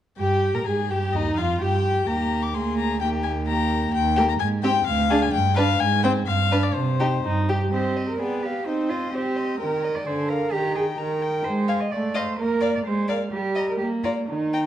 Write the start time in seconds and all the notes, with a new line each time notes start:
0.17 G2 G4 G5
0.54 A#2 A#4 A#5
0.66 G#2 G#4 G#5
0.89 G2 G4 G5
1.13 D#2 D#4 D#5
1.36 F2 F4 F5
1.60 G2 G4 G5
2.07 D#2 A#3 G4 A#5
2.43 D6
2.54 D2 A#3 G#4 C6
2.78 A#5
3.01 D#2 A#3 G4 G5
3.23 G#5
3.48 A#3 G4 A#5
3.92 D#2 G5
4.16 A#3 G4
4.29 A#5
4.40 G#2 G#5
4.63 C4 G4 G5
4.86 D2 F5
5.10 D4 G#4
5.22 G#5
5.33 G2 G5
5.56 D4 B4 F5
5.80 G#2 G#5
6.03 C4 C5 G5
6.27 G2 F5
6.51 D4 B4
6.63 D5
6.74 C3 C5
7.00 D#4 G4
7.24 G2 D#4
7.49 G4
7.72 C4 G4 C5 D#5
7.95 C5 D#5
8.08 A#4
8.19 B3 G#4 D5 G5
8.43 G4 F5 B5
8.65 C4 D#4 C5 G5
8.89 F4 D#5 C6
9.13 C4 G4 C5 G5
9.36 D#5 C6
9.59 D#3 A#4 G5
9.82 D#5 A#5
9.95 D5
10.06 D3 C5 D5 G#5
10.29 A#4 F5 A#5
10.52 D#3 G4 G5 A#5
10.75 G#4 G5 A#5
10.98 D#3 A#4 G5 A#5
11.22 G5 A#5
11.44 G#3 C5
11.68 F5 G#5
11.80 D#5
11.91 A3 D5
12.14 C5 D#5 F5
12.38 A#3 A#4
12.61 D5 F5
12.75 D5
12.85 G#3 C5
13.08 A#4 D5 F5
13.31 G3 G4
13.55 D#5 A#5
13.69 A#4
13.78 A#3 G4
14.04 F4 D5 A#5
14.28 D#3 D#4
14.53 G5 A#5